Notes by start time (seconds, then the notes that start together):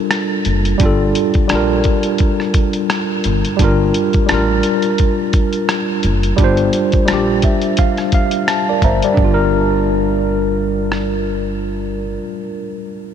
Already playing: G3 D4 F4 A4 A#4
0.11 cross-stick, closed hi-hat
0.45 F#1, closed hi-hat
0.65 closed hi-hat
0.78 G1 G3 D4, kick, closed hi-hat
0.83 F4 A4
1.15 closed hi-hat
1.34 kick, closed hi-hat
1.48 A#1 G3 D4, cross-stick, closed hi-hat
1.52 F4 A#4
1.84 kick, closed hi-hat
2.03 closed hi-hat
2.18 kick, closed hi-hat
2.40 cross-stick
2.54 kick, closed hi-hat
2.73 closed hi-hat
2.90 cross-stick, closed hi-hat
3.24 G1, closed hi-hat
3.45 closed hi-hat
3.57 G1 G3 D4, kick, closed hi-hat
3.62 F4 A#4
3.94 closed hi-hat
4.13 kick, closed hi-hat
4.26 A1 G3 D4, cross-stick, closed hi-hat
4.32 F4 A#4
4.63 closed hi-hat
4.82 closed hi-hat
4.98 kick, closed hi-hat
5.33 kick, closed hi-hat
5.53 closed hi-hat
5.69 cross-stick, closed hi-hat
6.03 F#1, closed hi-hat
6.23 closed hi-hat
6.37 G1 G3 D4, kick, closed hi-hat
6.41 F4 C5
6.57 closed hi-hat
6.73 closed hi-hat
6.92 kick, closed hi-hat
7.05 G3 D4, cross-stick, closed hi-hat
7.10 A#1 F4 G4
7.42 E5, kick, closed hi-hat
7.62 closed hi-hat
7.77 F5, kick, closed hi-hat
7.97 cross-stick, closed hi-hat
8.12 F5, kick, closed hi-hat
8.31 closed hi-hat
8.48 A5, cross-stick, closed hi-hat
8.69 A#4 D5
8.82 G1 C5 E5 A#5, kick, closed hi-hat
9.02 G3 A#4 D5, closed hi-hat
9.14 D4, kick
9.18 G1
9.24 F4
9.34 A#4
10.92 cross-stick